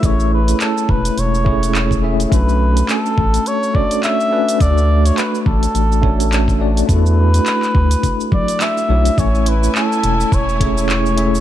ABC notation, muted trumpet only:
X:1
M:4/4
L:1/16
Q:"Swing 16ths" 1/4=105
K:A
V:1 name="Muted trumpet"
c2 B2 A2 B2 c6 z2 | B4 A4 c2 d2 e4 | d3 c B3/2 B/2 A8 z2 | B8- B2 d2 e4 |
c2 B2 A4 c4 c4 |]